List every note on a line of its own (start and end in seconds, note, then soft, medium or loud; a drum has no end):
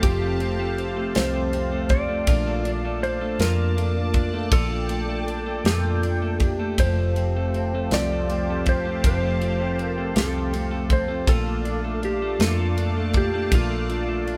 0.00 1.12 F1 medium
0.00 0.41 F2 medium
0.00 0.41 C3 medium
0.00 0.39 F3 medium
0.00 0.21 A3 medium
0.00 0.40 A3 medium
0.00 0.39 C4 medium
0.00 0.41 C4 medium
0.00 2.24 G4 medium
0.00 1.19 G4 medium
0.00 2.24 C5 medium
0.00 4.48 F5 medium
0.00 2.24 A5 medium
0.00 kick loud
0.00 ride medium
0.05 0.41 G4 medium
0.22 0.59 A3 medium
0.40 0.59 F3 medium
0.40 0.60 A3 medium
0.40 0.59 C4 medium
0.40 0.58 G4 medium
0.40 ride soft
0.59 0.98 F3 soft
0.59 0.97 A3 soft
0.59 0.96 C4 soft
0.59 0.95 G4 medium
0.78 1.52 C4 medium
0.78 ride soft
0.96 1.15 F3 soft
0.96 1.15 A3 soft
0.96 1.15 C4 soft
0.96 1.16 G4 medium
1.15 2.24 C2 medium
1.15 1.53 F2 medium
1.15 1.53 C3 medium
1.15 1.51 F3 medium
1.15 1.52 A3 medium
1.15 1.53 C4 medium
1.15 1.54 G4 medium
1.15 1.93 C5 medium
1.15 snare loud
1.15 ride medium
1.34 1.72 A3 medium
1.52 1.72 F3 medium
1.52 1.72 A3 medium
1.52 1.70 C4 medium
1.52 1.70 G4 medium
1.52 ride soft
1.71 2.09 F3 soft
1.71 2.08 A3 soft
1.71 2.08 C4 soft
1.71 2.07 G4 soft
1.89 2.35 C4 medium
1.89 3.03 D5 loud
1.89 kick medium
1.89 ride soft
2.08 2.27 F3 soft
2.08 2.27 A3 soft
2.08 2.28 C4 soft
2.08 2.27 G4 medium
2.27 3.35 A#1 medium
2.27 2.65 A#2 medium
2.27 2.62 F3 medium
2.27 2.63 A3 medium
2.27 2.64 D4 medium
2.27 2.65 F4 medium
2.27 6.75 D5 medium
2.27 6.75 A5 medium
2.27 kick loud
2.27 ride medium
2.47 2.84 A3 medium
2.63 2.83 F3 medium
2.63 2.83 A3 medium
2.63 2.82 D4 medium
2.63 2.81 F4 medium
2.63 ride soft
2.82 3.22 A3 soft
2.82 3.21 D4 soft
2.82 3.19 F4 medium
3.02 3.76 D4 medium
3.02 3.41 C5 medium
3.02 ride soft
3.20 3.41 A3 soft
3.20 3.39 D4 medium
3.20 3.39 F4 medium
3.39 4.48 F2 loud
3.39 3.77 A#2 medium
3.39 3.75 F3 medium
3.39 3.77 D4 medium
3.39 3.78 F4 medium
3.39 4.52 A#4 loud
3.39 snare loud
3.39 ride medium
3.76 3.95 F3 medium
3.76 3.96 A3 medium
3.76 3.96 D4 medium
3.76 3.95 F4 medium
3.76 ride soft
3.96 4.34 D4 soft
3.96 4.33 F4 medium
4.14 4.88 D4 medium
4.14 kick medium
4.14 ride soft
4.34 4.52 A3 soft
4.34 4.52 D4 soft
4.34 4.52 F4 medium
4.52 5.61 A#1 loud
4.52 4.90 A#2 medium
4.52 4.88 F3 medium
4.52 4.89 A3 medium
4.52 4.90 D4 medium
4.52 4.90 F4 medium
4.52 5.65 A4 loud
4.52 6.76 G5 medium
4.52 kick loud
4.52 ride medium
4.71 5.09 A3 soft
4.89 5.08 F3 medium
4.89 5.09 A3 medium
4.89 5.09 D4 medium
4.89 5.07 F4 medium
4.89 ride soft
5.09 5.47 A3 soft
5.09 5.46 D4 soft
5.09 5.45 F4 medium
5.27 6.02 D4 medium
5.27 ride soft
5.46 5.65 A3 soft
5.46 5.65 D4 soft
5.46 5.65 F4 soft
5.64 6.74 F2 medium
5.64 6.03 A#2 medium
5.64 6.01 F3 medium
5.64 6.03 A3 medium
5.64 6.03 D4 medium
5.64 6.04 F4 medium
5.64 6.46 A4 medium
5.64 snare loud
5.64 ride medium
5.84 6.22 A3 medium
6.03 6.22 F3 medium
6.03 6.22 A3 medium
6.03 6.22 D4 medium
6.03 6.20 F4 medium
6.03 ride soft
6.21 6.60 A3 soft
6.21 6.59 D4 soft
6.21 6.57 F4 soft
6.40 6.86 D4 medium
6.40 kick medium
6.40 ride soft
6.46 6.82 G4 medium
6.59 6.78 A3 soft
6.59 6.79 D4 soft
6.59 6.78 F4 soft
6.78 7.88 F1 medium
6.78 7.16 F2 medium
6.78 7.16 C3 medium
6.78 7.15 F3 medium
6.78 7.15 A3 medium
6.78 7.16 C4 medium
6.78 7.17 G4 medium
6.78 11.24 G4 medium
6.78 11.24 C5 medium
6.78 7.93 C5 medium
6.78 11.24 F5 medium
6.78 11.24 A5 medium
6.78 kick loud
6.78 ride medium
6.98 7.36 A3 soft
7.16 7.35 F3 medium
7.16 7.35 A3 medium
7.16 7.35 C4 medium
7.16 7.34 G4 medium
7.16 ride soft
7.35 7.73 F3 soft
7.35 7.73 A3 soft
7.35 7.72 C4 soft
7.35 7.71 G4 soft
7.54 8.30 C4 medium
7.54 ride soft
7.72 7.91 F3 soft
7.72 7.91 A3 soft
7.72 7.92 C4 soft
7.72 7.91 G4 soft
7.91 9.00 C2 medium
7.91 8.29 F2 medium
7.91 8.30 C3 medium
7.91 8.28 F3 medium
7.91 8.29 A3 medium
7.91 8.29 C4 medium
7.91 8.30 G4 medium
7.91 8.69 D5 medium
7.91 snare loud
7.91 ride medium
8.13 8.50 A3 medium
8.29 8.48 F3 medium
8.29 8.48 A3 medium
8.29 8.49 C4 medium
8.29 8.48 G4 medium
8.29 ride soft
8.49 8.87 F3 soft
8.49 8.86 A3 soft
8.49 8.86 C4 soft
8.49 8.85 G4 soft
8.66 9.41 C4 soft
8.66 9.05 C5 medium
8.66 kick medium
8.66 ride soft
8.86 9.04 F3 soft
8.86 9.04 A3 medium
8.86 9.05 C4 soft
8.86 9.04 G4 medium
9.04 10.12 F1 loud
9.04 9.42 F2 medium
9.04 9.42 C3 medium
9.04 9.40 F3 medium
9.04 9.41 A3 medium
9.04 9.42 C4 medium
9.04 9.43 G4 medium
9.04 9.85 C5 medium
9.04 kick loud
9.04 ride medium
9.23 9.59 A3 medium
9.41 9.60 F3 medium
9.41 9.61 A3 medium
9.41 9.60 C4 medium
9.41 9.59 G4 medium
9.41 ride soft
9.60 9.99 F3 soft
9.60 9.98 A3 soft
9.60 9.97 C4 soft
9.60 9.97 G4 medium
9.79 10.52 C4 medium
9.79 ride soft
9.85 10.20 A#4 medium
9.98 10.16 F3 soft
9.98 10.17 A3 soft
9.98 10.17 C4 soft
9.98 10.16 G4 medium
10.16 11.24 C2 medium
10.16 10.54 F2 medium
10.16 10.54 C3 medium
10.16 10.52 F3 medium
10.16 10.53 A3 medium
10.16 10.54 C4 medium
10.16 10.54 G4 medium
10.16 10.94 A4 medium
10.16 snare loud
10.16 ride medium
10.34 10.71 A3 medium
10.53 10.72 F3 medium
10.53 10.72 A3 medium
10.53 10.72 C4 medium
10.53 10.71 G4 medium
10.53 ride soft
10.72 11.10 F3 soft
10.72 11.09 A3 soft
10.72 11.08 C4 medium
10.72 11.07 G4 medium
10.90 11.35 C4 medium
10.90 11.30 C5 medium
10.90 kick medium
10.90 ride soft
11.08 11.27 F3 soft
11.08 11.28 A3 soft
11.08 11.28 C4 medium
11.08 11.27 G4 medium
11.27 12.36 A#1 medium
11.27 11.65 A#2 medium
11.27 11.64 F3 medium
11.27 14.37 A3 medium
11.27 11.65 A3 medium
11.27 11.65 D4 medium
11.27 11.66 F4 medium
11.27 12.04 A4 loud
11.27 14.37 D5 medium
11.27 14.37 F5 medium
11.27 14.37 A5 medium
11.27 kick loud
11.27 ride medium
11.46 11.84 A3 medium
11.65 11.84 F3 medium
11.65 11.84 A3 medium
11.65 11.85 D4 medium
11.65 11.83 F4 medium
11.65 ride soft
11.85 12.22 A3 soft
11.85 12.21 D4 soft
11.85 12.20 F4 medium
12.03 12.77 D4 medium
12.03 12.42 G4 medium
12.03 ride soft
12.21 12.39 A3 soft
12.21 12.40 D4 soft
12.21 12.40 F4 medium
12.39 13.48 F2 medium
12.39 12.77 A#2 medium
12.39 12.76 F3 medium
12.39 12.77 A3 medium
12.39 12.77 D4 medium
12.39 12.78 F4 medium
12.39 13.17 A4 medium
12.39 snare loud
12.39 ride medium
12.59 12.96 A3 medium
12.77 12.96 F3 medium
12.77 12.96 A3 medium
12.77 12.96 D4 medium
12.77 12.94 F4 medium
12.77 ride soft
12.95 13.34 A3 soft
12.95 13.34 D4 medium
12.95 13.32 F4 medium
13.13 13.89 D4 medium
13.13 13.54 G4 medium
13.13 kick loud
13.13 ride soft
13.33 13.51 A3 soft
13.33 13.52 D4 soft
13.33 13.52 F4 medium
13.52 14.37 A#1 loud
13.52 13.89 A#2 medium
13.52 13.88 F3 medium
13.52 13.89 A3 medium
13.52 13.89 D4 medium
13.52 13.90 F4 medium
13.52 14.37 F4 medium
13.52 kick loud
13.52 ride medium
13.70 14.08 A3 medium
13.89 14.08 F3 medium
13.89 14.09 A3 medium
13.89 14.08 D4 medium
13.89 14.07 F4 medium
13.89 ride soft
14.08 14.37 A3 soft
14.08 14.37 D4 soft
14.08 14.37 F4 medium
14.27 14.37 D4 medium
14.27 ride soft